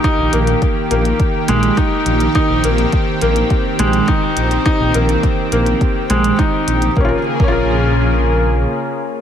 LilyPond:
<<
  \new Staff \with { instrumentName = "Felt piano" } { \time 4/4 \key ees \mixolydian \tempo 4 = 104 ees'8 bes4 bes4 aes8 ees'4 | ees'8 bes4 bes4 aes8 ees'4 | ees'8 bes4 bes4 aes8 ees'4 | <bes des' f' bes'>16 r8 <bes des' f' bes'>2.~ <bes des' f' bes'>16 | }
  \new Staff \with { instrumentName = "Analog synth pad" } { \time 4/4 \key ees \mixolydian << { <ees g'>1~ | <ees g'>1~ | <ees g'>1 | <des bes aes'>1 | } \\ { bes1 | c'1~ | c'1 | r1 | } >> }
  \new Staff \with { instrumentName = "Detuned saw bass" } { \clef bass \time 4/4 \key ees \mixolydian r16 bes,,16 bes,,8 r8 bes,,8 r8 bes,,8 r8 bes,,8 | r16 bes,,16 bes,,8 r8 bes,,8 r8 bes,,8 r8 bes,,8 | r16 bes,,16 bes,,8 r8 bes,,8 r8 bes,,8 r8 bes,,8 | bes,,16 r8 bes,,2~ bes,,16 r4 | }
  \new DrumStaff \with { instrumentName = "Drums" } \drummode { \time 4/4 <hh bd>8 hh16 hh16 <hh bd>8 hh16 hh16 <hh bd>8 hh16 hh16 <hh bd>8 hh16 hh16 | <hh bd>8 hh16 hh16 <hh bd>8 hh16 hh16 <hh bd>8 hh16 hh16 <hh bd>8 hh16 hh16 | <hh bd>8 hh16 hh16 <hh bd>8 hh16 hh16 <hh bd>8 hh16 hh16 <hh bd>8 hh16 hh16 | bd8. bd16 r4 r4 r4 | }
>>